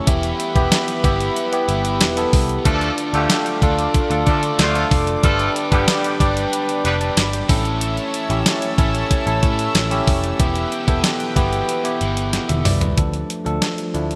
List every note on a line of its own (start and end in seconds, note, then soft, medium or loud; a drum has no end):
0.07 0.32 E1 loud
0.07 1.04 E3 medium
0.07 0.36 B3 medium
0.07 1.04 B3 loud
0.07 0.37 E4 medium
0.07 1.02 E4 loud
0.07 0.37 G4 medium
0.07 2.63 G4 medium
0.07 2.63 B4 medium
0.07 2.63 E5 medium
0.07 2.63 B5 loud
0.07 kick loud
0.07 closed hi-hat medium
0.23 closed hi-hat soft
0.40 closed hi-hat medium
0.55 0.68 E1 loud
0.55 0.85 B3 medium
0.55 0.85 E4 medium
0.55 0.85 G4 loud
0.55 kick medium
0.55 closed hi-hat medium
0.72 snare loud
0.72 closed hi-hat loud
0.72 tambourine medium
0.88 closed hi-hat medium
1.03 1.28 G1 medium
1.03 1.33 B3 medium
1.03 1.69 B3 soft
1.03 1.67 E4 medium
1.03 1.34 E4 medium
1.03 1.34 G4 medium
1.03 kick loud
1.03 closed hi-hat medium
1.21 closed hi-hat medium
1.36 closed hi-hat medium
1.52 1.92 B3 medium
1.52 1.92 E4 medium
1.52 1.92 G4 medium
1.52 closed hi-hat medium
1.68 2.01 G1 medium
1.68 2.65 B3 soft
1.68 2.65 E4 medium
1.68 closed hi-hat medium
1.85 closed hi-hat medium
2.01 2.25 E1 medium
2.01 snare loud
2.01 closed hi-hat medium
2.01 tambourine medium
2.17 2.46 B3 medium
2.17 2.47 E4 medium
2.17 2.47 A4 loud
2.17 closed hi-hat medium
2.33 2.57 C2 medium
2.33 kick loud
2.33 open hi-hat medium
2.49 closed hi-hat medium
2.65 2.90 D2 medium
2.65 5.23 D3 medium
2.65 2.91 F3 loud
2.65 2.91 A3 loud
2.65 3.62 A3 medium
2.65 2.91 D4 loud
2.65 2.95 D4 medium
2.65 3.61 D4 loud
2.65 2.95 F4 medium
2.65 2.91 A4 loud
2.65 5.21 A4 medium
2.65 2.95 A4 medium
2.65 7.45 D5 medium
2.65 5.21 F5 medium
2.65 7.45 D6 loud
2.65 kick loud
2.65 closed hi-hat medium
2.81 closed hi-hat soft
2.98 closed hi-hat medium
3.14 3.26 D2 medium
3.14 3.59 D3 medium
3.14 3.59 G3 medium
3.14 3.59 A3 medium
3.14 3.43 D4 medium
3.14 3.44 F4 medium
3.14 3.59 G4 loud
3.14 3.44 A4 medium
3.14 closed hi-hat soft
3.30 snare loud
3.30 closed hi-hat loud
3.30 tambourine medium
3.46 closed hi-hat medium
3.61 3.86 D2 medium
3.61 4.27 A3 soft
3.61 4.25 D4 medium
3.61 3.92 D4 medium
3.61 3.92 F4 medium
3.61 3.92 A4 medium
3.61 kick loud
3.61 closed hi-hat medium
3.79 closed hi-hat medium
3.94 kick medium
3.94 closed hi-hat medium
4.10 4.23 D2 medium
4.10 4.50 D4 medium
4.10 4.50 F4 medium
4.10 4.50 A4 loud
4.10 closed hi-hat medium
4.26 4.51 D3 medium
4.26 4.40 F3 medium
4.26 4.40 A3 medium
4.26 5.24 A3 medium
4.26 7.48 D4 medium
4.26 4.40 D4 medium
4.26 4.40 A4 medium
4.26 kick medium
4.26 closed hi-hat medium
4.43 closed hi-hat medium
4.59 4.83 D2 loud
4.59 4.85 D3 loud
4.59 4.85 F3 loud
4.59 4.85 A3 loud
4.59 4.85 F4 loud
4.59 snare loud
4.59 closed hi-hat medium
4.59 tambourine medium
4.75 5.04 D4 medium
4.75 5.05 F4 medium
4.75 5.05 A4 loud
4.75 closed hi-hat medium
4.91 5.16 F1 medium
4.91 kick loud
4.91 open hi-hat medium
5.07 closed hi-hat medium
5.23 5.48 G1 loud
5.23 6.20 G2 medium
5.23 6.20 D3 medium
5.23 6.18 G3 loud
5.23 5.49 A3 loud
5.23 5.53 D4 medium
5.23 5.49 F4 loud
5.23 5.53 G4 medium
5.23 5.49 A4 loud
5.23 7.47 B4 medium
5.23 5.53 B4 medium
5.23 7.47 G5 medium
5.23 kick loud
5.23 closed hi-hat medium
5.39 closed hi-hat soft
5.56 closed hi-hat medium
5.72 5.84 G1 loud
5.72 6.17 D3 medium
5.72 6.17 G3 medium
5.72 6.17 B3 medium
5.72 6.01 D4 medium
5.72 6.17 G4 loud
5.72 6.01 G4 medium
5.72 6.02 B4 medium
5.72 kick medium
5.72 closed hi-hat soft
5.88 snare loud
5.88 closed hi-hat medium
5.88 tambourine medium
6.04 closed hi-hat medium
6.20 6.45 G1 medium
6.20 6.86 D3 soft
6.20 6.83 G3 medium
6.20 6.50 D4 medium
6.20 6.50 G4 medium
6.20 6.50 D5 medium
6.20 kick loud
6.20 closed hi-hat medium
6.37 closed hi-hat medium
6.53 closed hi-hat medium
6.69 closed hi-hat medium
6.84 7.09 F1 medium
6.84 7.50 D3 soft
6.84 7.49 G3 medium
6.84 6.95 G3 medium
6.84 6.95 B3 medium
6.84 6.95 D4 medium
6.84 6.95 B4 medium
6.84 closed hi-hat medium
7.01 7.16 A5 medium
7.01 closed hi-hat medium
7.17 7.41 G1 loud
7.17 7.32 B5 medium
7.17 snare loud
7.17 closed hi-hat medium
7.17 tambourine medium
7.33 7.64 G5 medium
7.33 closed hi-hat medium
7.48 7.98 A1 loud
7.48 8.80 A2 medium
7.48 8.80 E3 medium
7.48 8.77 A3 medium
7.48 8.13 C#4 medium
7.48 8.14 E4 medium
7.48 8.14 A4 loud
7.48 10.37 C#5 medium
7.48 12.93 E5 medium
7.48 10.37 A5 medium
7.48 12.94 E6 loud
7.48 kick loud
7.48 open hi-hat medium
7.65 closed hi-hat medium
7.81 closed hi-hat medium
7.97 closed hi-hat soft
8.14 closed hi-hat medium
8.29 8.42 A1 loud
8.29 8.59 C#4 medium
8.29 8.60 E4 medium
8.29 8.60 G4 medium
8.29 closed hi-hat medium
8.46 snare loud
8.46 closed hi-hat loud
8.46 tambourine medium
8.62 closed hi-hat medium
8.78 9.03 A1 medium
8.78 9.44 E3 medium
8.78 9.41 A3 medium
8.78 9.08 C#4 medium
8.78 9.08 E4 medium
8.78 9.08 A4 loud
8.78 kick loud
8.78 closed hi-hat medium
8.95 closed hi-hat medium
9.11 kick medium
9.11 closed hi-hat medium
9.26 9.39 A1 medium
9.26 9.66 C#4 medium
9.26 9.66 E4 medium
9.26 9.66 A4 medium
9.26 closed hi-hat medium
9.42 9.67 A2 loud
9.42 10.40 E3 medium
9.42 10.39 A3 medium
9.42 kick loud
9.42 closed hi-hat medium
9.59 closed hi-hat medium
9.75 9.99 A1 loud
9.75 snare loud
9.75 closed hi-hat medium
9.75 tambourine medium
9.91 10.20 C#4 medium
9.91 10.21 E4 medium
9.91 10.21 G4 loud
9.91 closed hi-hat medium
10.07 10.32 F1 medium
10.07 kick loud
10.07 open hi-hat medium
10.24 closed hi-hat medium
10.39 10.64 E1 loud
10.39 11.36 E2 medium
10.39 11.37 B2 medium
10.39 11.34 E3 loud
10.39 10.69 B3 medium
10.39 10.69 E4 medium
10.39 10.69 G4 medium
10.39 12.95 B4 medium
10.39 12.95 G5 medium
10.39 kick loud
10.39 closed hi-hat medium
10.55 closed hi-hat soft
10.72 closed hi-hat medium
10.87 11.00 E1 medium
10.87 11.17 B3 medium
10.87 11.17 E4 medium
10.87 11.18 A4 medium
10.87 kick medium
10.87 closed hi-hat medium
11.04 snare loud
11.04 closed hi-hat loud
11.04 tambourine medium
11.20 closed hi-hat medium
11.35 11.61 G1 medium
11.35 12.02 B2 medium
11.35 11.99 E3 medium
11.35 11.65 B3 medium
11.35 11.66 E4 medium
11.35 11.66 G4 medium
11.35 kick loud
11.35 closed hi-hat medium
11.53 closed hi-hat medium
11.69 closed hi-hat medium
11.84 12.24 B3 medium
11.84 12.24 E4 medium
11.84 12.24 G4 loud
11.84 closed hi-hat medium
12.00 12.37 G1 medium
12.00 12.99 B2 soft
12.00 12.97 E3 medium
12.00 closed hi-hat medium
12.17 closed hi-hat medium
12.33 12.48 G5 medium
12.33 snare medium
12.33 closed hi-hat medium
12.48 12.62 E1 medium
12.48 12.64 E5 medium
12.48 closed hi-hat medium
12.48 high tom medium
12.65 12.90 C2 medium
12.65 12.80 D5 medium
12.65 mid tom loud
12.65 open hi-hat medium
12.81 13.12 B4 medium
12.81 closed hi-hat medium
12.81 floor tom loud
12.97 13.22 D2 medium
12.97 13.27 F3 medium
12.97 13.27 A3 medium
12.97 13.27 D4 medium
12.97 13.27 A4 medium
12.97 kick loud
12.97 closed hi-hat medium
13.14 closed hi-hat soft
13.30 closed hi-hat medium
13.45 13.58 D2 medium
13.45 13.75 F3 medium
13.45 13.75 A3 medium
13.45 13.75 D4 medium
13.45 13.76 A4 medium
13.45 closed hi-hat soft
13.62 snare loud
13.62 closed hi-hat medium
13.78 closed hi-hat medium
13.94 14.15 D2 medium
13.94 14.15 F3 medium
13.94 14.15 A3 medium
13.94 14.15 D4 medium
13.94 14.15 E4 medium
13.94 closed hi-hat medium
14.11 closed hi-hat soft